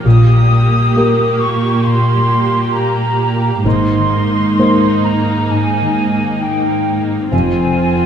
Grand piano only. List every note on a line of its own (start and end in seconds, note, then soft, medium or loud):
0.05 0.93 A#2 soft
0.96 3.61 A#3 soft
0.96 3.61 G4 soft
0.96 3.62 A#4 soft
3.65 4.55 G#2 soft
4.59 7.29 A#3 soft
4.59 7.30 D#4 soft
4.59 7.30 C5 soft
7.32 8.06 F2 soft